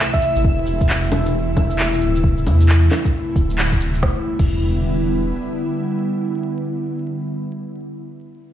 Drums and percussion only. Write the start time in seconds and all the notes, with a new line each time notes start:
0.14 kick, shaker
0.22 cabasa, shaker
0.36 shaker
0.45 kick
0.67 cabasa
0.81 kick, shaker
0.89 clap
1.03 shaker
1.12 low bongo, cabasa
1.26 shaker
1.57 kick, low bongo, cabasa
1.71 shaker
1.79 clap
1.93 shaker
2.02 cabasa, shaker
2.16 shaker
2.24 kick
2.38 cabasa
2.47 low bongo, cabasa
2.61 shaker
2.69 clap
2.83 shaker
2.91 clap, low bongo, cabasa
3.05 kick, shaker
3.36 kick, cabasa
3.50 shaker
3.58 clap
3.72 kick, shaker
3.81 cabasa, shaker
3.95 shaker
4.03 kick, snare
4.39 kick, crash